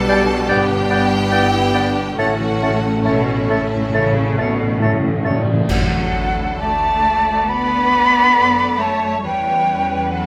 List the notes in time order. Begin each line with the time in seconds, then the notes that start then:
Already playing: B1 B2 G3 B3 D4 G4 A4 B4 A5
0.09 G3 D5 G6
0.30 G5
0.48 G1 G2 B3 D4 G4 D5 G5 G6
0.70 D3
0.90 B3 D5 G6
1.11 D4
1.31 B3 E4 G4 D5 G6
1.53 B4
1.74 B3 D4 D5 G6
2.16 A1 A2 A3 C#4 F#4 A4 C#5 F#5 A6
2.25 A2
2.34 A2
2.39 A2 E3
2.49 A2
2.56 A2
2.62 A2 A3 C#5 A6
2.70 A2
2.84 A2 C#4
3.00 A2
3.04 A2 B2 A3 E4 A4 C#5 E5 A6
3.23 A2
3.28 A2 C#4
3.37 A2
3.44 A2
3.49 A2 A3 C#5 A6
3.60 A2
3.67 A2
3.71 A2 A5
3.81 A2
3.89 A2 C#3 C#5
3.94 A2 A3 C#5 A6
4.06 A2
4.12 A2 A4
4.19 A2
4.26 A2
4.34 A2 B2 A3
4.38 A2 C#4 C#5 A6
4.49 A2
4.55 A2
4.60 A2 A3
4.71 A2
4.78 A2 E3
4.82 A2 A3 C#5 A6
4.93 A2
5.00 A2 A3
5.08 A2
5.16 A2
5.23 G2 A2 E3 A3 C#5 A6
5.30 A2
5.38 A2
5.44 A2 A3
5.53 A2
5.60 A2
5.69 D2 D3 F#3 D4 A4 F#5, concert bass drum, crash
5.99 D4
6.13 E4
6.30 A4
6.59 A3 D4 D5 A5
7.19 D5
7.47 A3 B3 D4 B4 D5 B5
7.77 D4
7.94 D4
8.07 A4
8.36 F#2 A4 D5
8.65 A5
8.79 A3 C#5 A5
8.95 D5
9.22 E2 E3 G3 C#4 B4 C#5 G5
9.53 C#4
9.83 A4
10.11 F#3 C#4 A4 C#5 F#5